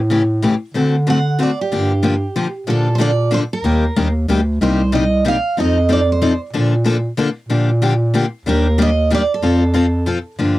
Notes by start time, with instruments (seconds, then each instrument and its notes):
Already playing: bass clarinet A2
0.10 steel-string acoustic guitar C#3 E3 A3 C#4 G4
0.42 steel-string acoustic guitar C#3 E3 A3 C#4 G4
0.74 steel-string acoustic guitar D3 A3 C4 F#4 A4, bass clarinet D3
1.07 steel-string acoustic guitar D3 A3 C4 F#4 A4 F#5
1.39 steel-string acoustic guitar D3 A3 C4 F#4 A4
1.43 steel-string acoustic guitar D5
1.61 steel-string acoustic guitar G4
1.71 bass clarinet G2, steel-string acoustic guitar D3 F3 A#3 D4 G4
2.03 steel-string acoustic guitar D3 F3 A#3 D4 G4
2.36 steel-string acoustic guitar D3 F3 A#3 D4 G4
2.66 bass clarinet A#2, steel-string acoustic guitar D3 F3 A#3 D4 A4
2.95 steel-string acoustic guitar D3 F3 C5
2.99 steel-string acoustic guitar A#3 D4 A4 D5
3.31 steel-string acoustic guitar D3 F3 A#3 D4 A4 C5
3.53 steel-string acoustic guitar A#4
3.63 bass clarinet D#2, steel-string acoustic guitar D#3 G3 A#3 D4 G4
3.95 bass clarinet D#2, steel-string acoustic guitar D#3 G3 A#3 D4 G4
4.28 bass clarinet D2, steel-string acoustic guitar D#3 G3 A#3 D4 G4
4.60 bass clarinet C2, steel-string acoustic guitar C3 G3 A#3 D#4 G4 C5
4.92 steel-string acoustic guitar C3 G3 A#3 D#4 G4 D#5
5.25 steel-string acoustic guitar C3 G3 A#3 D#4 G4 F5
5.56 bass clarinet F2, steel-string acoustic guitar F3 C4 D#4 A4 D#5
5.89 steel-string acoustic guitar F3 C4 D#4 A4 D5
6.12 steel-string acoustic guitar C5
6.22 steel-string acoustic guitar F3 C4 D#4 A4
6.53 bass clarinet A#2, steel-string acoustic guitar D3 F3 A#3 D4 A4
6.84 steel-string acoustic guitar D3 F3 A#3 D4 A4
7.17 steel-string acoustic guitar D3 F3 A#3 D4 A4
7.49 bass clarinet A#2, steel-string acoustic guitar D3 F3 A#3 D4 G4
7.82 steel-string acoustic guitar D3 F3 A#3 D4 G4
8.14 steel-string acoustic guitar D3 F3 A#3 D4 G4
8.46 bass clarinet D#2, steel-string acoustic guitar D#3 G3 A#3 D4 G4 A#4
8.78 steel-string acoustic guitar D#3 G3 A#3 D4 G4 D#5
9.10 steel-string acoustic guitar D#3 G3 A#3 D4 G4
9.15 steel-string acoustic guitar D5
9.34 steel-string acoustic guitar A4
9.42 bass clarinet F2, steel-string acoustic guitar F3 C4 F4 A4
9.74 steel-string acoustic guitar F3 C4 F4 A4
10.06 steel-string acoustic guitar F3 C4 F4 A4
10.39 bass clarinet G2, steel-string acoustic guitar D3 F3 A#3 D4 G4